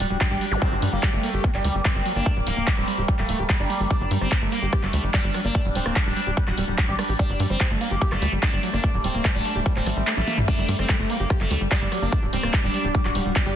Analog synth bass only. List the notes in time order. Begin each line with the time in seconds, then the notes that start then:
0.00 D1
0.10 D1
0.31 A1
0.52 A1
0.72 G1
0.82 G2
0.93 G1
1.13 G1
1.34 G1
1.54 G1
1.65 D2
1.75 G1
1.95 G1
2.16 G1
2.36 D1
2.47 D1
2.57 D1
2.78 D1
2.98 D1
3.19 D1
3.29 D1
3.39 D1
3.60 G1
3.80 G1
4.01 G1
4.11 G2
4.21 G1
4.42 G1
4.62 G1
4.83 G1
4.93 D2
5.04 G1
5.24 G1
5.45 G1
5.65 D1
5.75 D1
5.86 D1
6.06 D1
6.27 D1
6.47 D1
6.58 D1
6.68 D1
6.89 A1
7.09 A1
7.30 G1
7.40 G2
7.50 G1
7.71 G1
7.91 G1
8.12 G1
8.22 D2
8.32 G1
8.53 G1
8.73 G1
8.94 D1
9.04 D1
9.15 D1
9.35 D1
9.56 D1
9.76 D1
9.86 A1
9.97 A1
10.17 A#1
10.38 A#1
10.58 G1
10.69 G2
10.79 G1
10.99 G1
11.20 G1
11.41 G1
11.51 D2
11.61 G1
11.82 G1
12.02 G1
12.23 D1
12.33 D1
12.43 D1
12.64 D1
12.84 D1
13.05 D1
13.15 D1
13.26 D1
13.46 G1